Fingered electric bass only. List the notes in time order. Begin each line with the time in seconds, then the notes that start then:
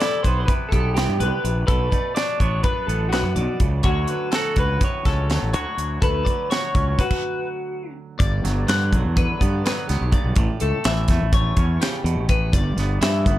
0.25 B1
0.72 B1
0.96 C2
1.08 G2
1.20 C2
1.44 A#1
1.68 B1
2.40 A1
2.88 A1
3.12 B1
3.23 F#2
3.36 B1
3.60 C#2
3.84 D2
4.56 C#2
5.05 C#2
5.30 D2
5.42 A1
5.54 D2
5.77 D2
6.03 D2
6.75 C#2
8.20 G1
8.44 G1
8.68 G2
8.93 B1
9.05 E2
9.41 G2
9.90 C#2
10.01 B1
10.24 B1
10.37 A1
10.62 C#2
10.85 A1
11.09 E2
11.21 A1
11.57 E2
12.04 E2
12.16 A1
12.53 G1
12.76 G1
13.01 G2
13.26 G1